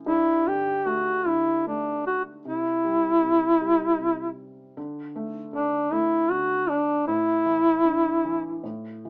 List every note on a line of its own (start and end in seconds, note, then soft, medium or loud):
0.06 2.40 G2 medium
0.06 0.49 E4 medium
0.47 1.24 D3 medium
0.47 0.89 G4 medium
0.86 1.65 A3 medium
0.86 1.29 F#4 medium
1.26 2.41 D3 medium
1.26 1.67 E4 medium
1.67 2.43 A3 soft
1.67 2.03 D4 medium
2.07 2.23 F#4 medium
2.45 3.20 C3 medium
2.45 4.34 E4 medium
2.84 3.60 G3 medium
3.22 3.98 C3 medium
3.61 4.73 G3 medium
3.99 4.74 C3 soft
4.77 5.51 D3 medium
5.16 5.91 A3 medium
5.53 6.29 D3 medium
5.53 5.94 D4 medium
5.92 7.04 A3 medium
5.92 6.32 E4 medium
6.31 7.05 D3 soft
6.31 6.71 F#4 medium
6.69 7.07 D4 medium
7.07 8.61 A2 medium
7.07 8.61 E4 medium
7.46 8.23 E3 medium
7.85 8.62 D4 medium
8.25 8.63 E3 medium
8.63 9.10 A2 medium
9.05 9.10 E3 soft